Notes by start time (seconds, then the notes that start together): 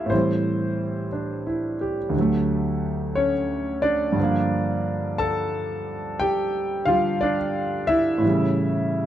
Already playing: C2 C3 D3 G3 A3 E4 F4 G4 E5 F5 G5
0.06 A2 E3 C5
0.11 G3 C4
0.17 C4
1.13 D4
1.47 E4
1.81 G4
2.09 D2
2.14 D3 F#3
2.21 A3
3.15 C#4 C#5
3.82 D4 D5
4.12 G2 D3
4.20 F3 A#3
5.18 A4 A5
6.20 G4 G5
6.85 D3 G3 F4 F5
7.21 D4 D5
7.87 E4 E5
8.18 A2 E3
8.25 G3
8.29 C#3